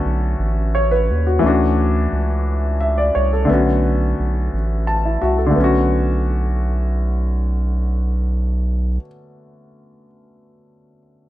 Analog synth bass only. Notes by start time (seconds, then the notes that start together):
0.06 B1
0.39 A1
1.10 D#2
1.44 D2
2.13 C#2
3.16 C2
3.51 B1
4.20 B1
4.54 A1
5.23 C2
5.58 B1